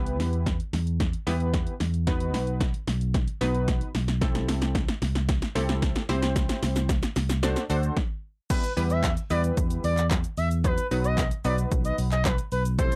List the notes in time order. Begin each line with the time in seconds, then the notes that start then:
Already playing: C2 B3 E4 G4 B4
0.06 closed hi-hat
0.20 E2, snare, open hi-hat
0.33 closed hi-hat
0.46 kick, snare, closed hi-hat
0.60 closed hi-hat
0.73 E2, snare, open hi-hat
0.87 closed hi-hat
1.00 kick, snare, closed hi-hat
1.13 closed hi-hat
1.27 E2 B3 E4 G4 B4, snare, open hi-hat
1.40 closed hi-hat
1.54 kick, snare, closed hi-hat
1.67 closed hi-hat
1.80 E2, snare, open hi-hat
1.94 closed hi-hat
2.07 B3 D#4 F#4 B4, kick, snare, closed hi-hat
2.20 closed hi-hat
2.34 B1, snare, open hi-hat
2.47 closed hi-hat
2.60 kick, snare, closed hi-hat
2.74 closed hi-hat
2.87 B1, snare, open hi-hat
3.01 closed hi-hat
3.14 kick, snare, closed hi-hat
3.28 closed hi-hat
3.41 B1 B3 D#4 F#4 B4, snare, open hi-hat
3.55 closed hi-hat
3.68 kick, snare, closed hi-hat
3.81 closed hi-hat
3.95 B1, snare, open hi-hat
4.08 snare, closed hi-hat
4.21 C4 E4 G4 A4, kick, snare, closed hi-hat
4.35 snare, closed hi-hat
4.48 C2, snare, open hi-hat
4.62 snare, closed hi-hat
4.75 kick, snare, closed hi-hat
4.88 snare, closed hi-hat
5.02 C2, snare, open hi-hat
5.15 snare, closed hi-hat
5.29 kick, snare, closed hi-hat
5.42 snare, closed hi-hat
5.55 C2 C4 E4 G4 A4, snare, open hi-hat
5.69 snare, closed hi-hat
5.82 kick, snare, closed hi-hat
5.95 snare, closed hi-hat
6.09 C2 C4 E4 G4 C5, snare, open hi-hat
6.22 snare, closed hi-hat
6.36 kick, snare, closed hi-hat, shaker
6.49 snare, closed hi-hat, shaker
6.63 C2, snare, open hi-hat, shaker
6.76 snare, closed hi-hat, shaker
6.89 kick, snare, closed hi-hat, shaker
7.03 snare, closed hi-hat, shaker
7.16 C2, snare, open hi-hat, shaker
7.29 snare, closed hi-hat, shaker
7.43 D4 F#4 A4 C5, snare, closed hi-hat, shaker
7.56 snare, closed hi-hat, shaker
7.70 D2 D4 F#4 A4 C5, open hi-hat, shaker
7.83 closed hi-hat, shaker
7.97 kick, snare
8.50 G3 B3 E4 G4 B4, kick, closed hi-hat, crash, shaker
8.64 closed hi-hat, shaker
8.77 E2 G3 B3 E4 G4 B4, open hi-hat, shaker
8.90 E5, closed hi-hat, shaker
9.03 kick, snare, clap, closed hi-hat, shaker
9.17 closed hi-hat, shaker
9.30 E2 G3 B3 E4 G4 B4 D5, open hi-hat, shaker
9.44 closed hi-hat, shaker
9.57 E2, kick, closed hi-hat, shaker
9.70 closed hi-hat, shaker
9.84 E2 D5, open hi-hat, shaker
9.97 clap, closed hi-hat, shaker
10.11 kick, snare, clap, closed hi-hat, shaker
10.24 closed hi-hat, shaker
10.37 E2 E5, open hi-hat, shaker
10.51 closed hi-hat, shaker
10.64 F#3 B3 D#4 F#4 B4, kick, closed hi-hat, shaker
10.78 closed hi-hat, shaker
10.91 B1 F#3 B3 D#4 F#4 B4, open hi-hat, shaker
11.04 D#5, closed hi-hat, shaker
11.18 kick, snare, clap, closed hi-hat, shaker
11.31 closed hi-hat, shaker
11.44 B1 F#3 B3 D#4 F#4 B4 D5, open hi-hat, shaker
11.58 closed hi-hat, shaker
11.71 B1, kick, closed hi-hat, shaker
11.85 D#5, closed hi-hat, shaker
11.98 B1, open hi-hat, shaker
12.12 D#5, clap, closed hi-hat, shaker
12.25 B4, kick, snare, clap, closed hi-hat, shaker
12.38 closed hi-hat, shaker
12.52 B1 B4, open hi-hat, shaker
12.65 closed hi-hat, shaker
12.78 A3 C4 E4 G4 A4 C5, kick, closed hi-hat, shaker
12.92 closed hi-hat, shaker